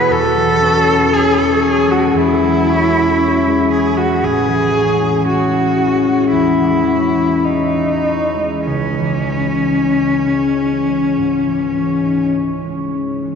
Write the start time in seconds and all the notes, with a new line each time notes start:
Already playing: B2 F#3 B3 E4 F#4 B4
0.10 E2 A4
0.34 F#3
0.60 C#4
0.84 E4
1.10 C#4 G#4
1.36 G#3 A4
1.62 C#4 G#4
1.88 G#3 F#4
2.14 E2 E4
2.41 F#3
2.67 C#4
2.92 E4
3.18 C#4
3.45 G#3
3.69 C#4 G#4
3.96 G#3 F#4
4.22 A1 G#4
4.48 E3
4.73 C#4
5.00 E4
5.25 C#4 F#4
5.53 E4
5.77 C#4
6.04 G#3
6.31 E2 E4
6.59 E3
6.87 C#4
7.17 E4
7.45 C#4 D#4
7.74 E4
8.06 C#4
8.34 G#3
8.66 C#2 C#4
8.99 E3
9.30 C#4
9.63 D#4
9.94 C#4
10.26 G#3
10.56 C#4
10.87 G#3
11.17 G#2
11.46 E3
11.76 C#4
12.04 D#4
12.34 C#4
12.64 G#3
12.95 C#4
13.24 G#3